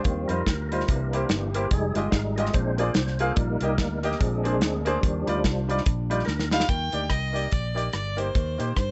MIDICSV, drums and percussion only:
0, 0, Header, 1, 2, 480
1, 0, Start_track
1, 0, Key_signature, -3, "major"
1, 0, Tempo, 414938
1, 62, Time_signature, 4, 2, 24, 8
1, 10309, End_track
2, 0, Start_track
2, 0, Title_t, "Drums"
2, 51, Note_on_c, 9, 42, 80
2, 58, Note_on_c, 9, 36, 102
2, 167, Note_off_c, 9, 42, 0
2, 174, Note_off_c, 9, 36, 0
2, 334, Note_on_c, 9, 42, 69
2, 449, Note_off_c, 9, 42, 0
2, 538, Note_on_c, 9, 36, 83
2, 538, Note_on_c, 9, 38, 96
2, 545, Note_on_c, 9, 42, 72
2, 653, Note_off_c, 9, 36, 0
2, 654, Note_off_c, 9, 38, 0
2, 661, Note_off_c, 9, 42, 0
2, 831, Note_on_c, 9, 42, 67
2, 928, Note_on_c, 9, 38, 30
2, 946, Note_off_c, 9, 42, 0
2, 1020, Note_on_c, 9, 42, 81
2, 1025, Note_on_c, 9, 36, 106
2, 1044, Note_off_c, 9, 38, 0
2, 1136, Note_off_c, 9, 42, 0
2, 1141, Note_off_c, 9, 36, 0
2, 1311, Note_on_c, 9, 42, 74
2, 1426, Note_off_c, 9, 42, 0
2, 1494, Note_on_c, 9, 42, 71
2, 1502, Note_on_c, 9, 38, 94
2, 1610, Note_off_c, 9, 42, 0
2, 1617, Note_off_c, 9, 38, 0
2, 1786, Note_on_c, 9, 42, 74
2, 1902, Note_off_c, 9, 42, 0
2, 1976, Note_on_c, 9, 42, 79
2, 1980, Note_on_c, 9, 36, 104
2, 2091, Note_off_c, 9, 42, 0
2, 2096, Note_off_c, 9, 36, 0
2, 2258, Note_on_c, 9, 42, 74
2, 2374, Note_off_c, 9, 42, 0
2, 2454, Note_on_c, 9, 38, 92
2, 2456, Note_on_c, 9, 36, 78
2, 2461, Note_on_c, 9, 42, 65
2, 2570, Note_off_c, 9, 38, 0
2, 2572, Note_off_c, 9, 36, 0
2, 2577, Note_off_c, 9, 42, 0
2, 2749, Note_on_c, 9, 42, 72
2, 2843, Note_on_c, 9, 38, 32
2, 2865, Note_off_c, 9, 42, 0
2, 2932, Note_on_c, 9, 42, 83
2, 2942, Note_on_c, 9, 36, 96
2, 2959, Note_off_c, 9, 38, 0
2, 3048, Note_off_c, 9, 42, 0
2, 3058, Note_off_c, 9, 36, 0
2, 3220, Note_on_c, 9, 42, 72
2, 3335, Note_off_c, 9, 42, 0
2, 3404, Note_on_c, 9, 42, 73
2, 3411, Note_on_c, 9, 38, 99
2, 3520, Note_off_c, 9, 42, 0
2, 3527, Note_off_c, 9, 38, 0
2, 3553, Note_on_c, 9, 38, 35
2, 3669, Note_off_c, 9, 38, 0
2, 3691, Note_on_c, 9, 42, 75
2, 3807, Note_off_c, 9, 42, 0
2, 3889, Note_on_c, 9, 42, 81
2, 3896, Note_on_c, 9, 36, 111
2, 4004, Note_off_c, 9, 42, 0
2, 4012, Note_off_c, 9, 36, 0
2, 4171, Note_on_c, 9, 42, 72
2, 4286, Note_off_c, 9, 42, 0
2, 4374, Note_on_c, 9, 38, 96
2, 4375, Note_on_c, 9, 36, 78
2, 4381, Note_on_c, 9, 42, 70
2, 4490, Note_off_c, 9, 38, 0
2, 4491, Note_off_c, 9, 36, 0
2, 4497, Note_off_c, 9, 42, 0
2, 4666, Note_on_c, 9, 42, 72
2, 4764, Note_on_c, 9, 38, 32
2, 4782, Note_off_c, 9, 42, 0
2, 4864, Note_on_c, 9, 42, 88
2, 4866, Note_on_c, 9, 36, 110
2, 4880, Note_off_c, 9, 38, 0
2, 4980, Note_off_c, 9, 42, 0
2, 4981, Note_off_c, 9, 36, 0
2, 5150, Note_on_c, 9, 42, 71
2, 5266, Note_off_c, 9, 42, 0
2, 5335, Note_on_c, 9, 42, 73
2, 5342, Note_on_c, 9, 38, 111
2, 5450, Note_off_c, 9, 42, 0
2, 5457, Note_off_c, 9, 38, 0
2, 5620, Note_on_c, 9, 42, 77
2, 5736, Note_off_c, 9, 42, 0
2, 5821, Note_on_c, 9, 36, 109
2, 5827, Note_on_c, 9, 42, 78
2, 5937, Note_off_c, 9, 36, 0
2, 5943, Note_off_c, 9, 42, 0
2, 6102, Note_on_c, 9, 42, 75
2, 6217, Note_off_c, 9, 42, 0
2, 6295, Note_on_c, 9, 36, 80
2, 6298, Note_on_c, 9, 38, 98
2, 6305, Note_on_c, 9, 42, 73
2, 6411, Note_off_c, 9, 36, 0
2, 6414, Note_off_c, 9, 38, 0
2, 6421, Note_off_c, 9, 42, 0
2, 6589, Note_on_c, 9, 42, 76
2, 6684, Note_on_c, 9, 38, 33
2, 6704, Note_off_c, 9, 42, 0
2, 6777, Note_on_c, 9, 42, 81
2, 6783, Note_on_c, 9, 36, 114
2, 6799, Note_off_c, 9, 38, 0
2, 6893, Note_off_c, 9, 42, 0
2, 6899, Note_off_c, 9, 36, 0
2, 7066, Note_on_c, 9, 42, 72
2, 7182, Note_off_c, 9, 42, 0
2, 7260, Note_on_c, 9, 38, 51
2, 7375, Note_off_c, 9, 38, 0
2, 7398, Note_on_c, 9, 38, 60
2, 7513, Note_off_c, 9, 38, 0
2, 7536, Note_on_c, 9, 38, 85
2, 7635, Note_off_c, 9, 38, 0
2, 7635, Note_on_c, 9, 38, 84
2, 7737, Note_on_c, 9, 42, 73
2, 7738, Note_on_c, 9, 36, 101
2, 7751, Note_off_c, 9, 38, 0
2, 7853, Note_off_c, 9, 36, 0
2, 7853, Note_off_c, 9, 42, 0
2, 8008, Note_on_c, 9, 42, 61
2, 8124, Note_off_c, 9, 42, 0
2, 8209, Note_on_c, 9, 37, 88
2, 8214, Note_on_c, 9, 36, 70
2, 8216, Note_on_c, 9, 42, 62
2, 8325, Note_off_c, 9, 37, 0
2, 8329, Note_off_c, 9, 36, 0
2, 8332, Note_off_c, 9, 42, 0
2, 8512, Note_on_c, 9, 42, 68
2, 8628, Note_off_c, 9, 42, 0
2, 8693, Note_on_c, 9, 42, 72
2, 8704, Note_on_c, 9, 36, 96
2, 8809, Note_off_c, 9, 42, 0
2, 8820, Note_off_c, 9, 36, 0
2, 8994, Note_on_c, 9, 42, 60
2, 9110, Note_off_c, 9, 42, 0
2, 9171, Note_on_c, 9, 42, 66
2, 9179, Note_on_c, 9, 37, 98
2, 9287, Note_off_c, 9, 42, 0
2, 9294, Note_off_c, 9, 37, 0
2, 9463, Note_on_c, 9, 42, 75
2, 9579, Note_off_c, 9, 42, 0
2, 9661, Note_on_c, 9, 36, 97
2, 9661, Note_on_c, 9, 42, 68
2, 9776, Note_off_c, 9, 36, 0
2, 9777, Note_off_c, 9, 42, 0
2, 9944, Note_on_c, 9, 42, 68
2, 10060, Note_off_c, 9, 42, 0
2, 10139, Note_on_c, 9, 36, 73
2, 10141, Note_on_c, 9, 37, 82
2, 10148, Note_on_c, 9, 42, 62
2, 10255, Note_off_c, 9, 36, 0
2, 10256, Note_off_c, 9, 37, 0
2, 10263, Note_off_c, 9, 42, 0
2, 10309, End_track
0, 0, End_of_file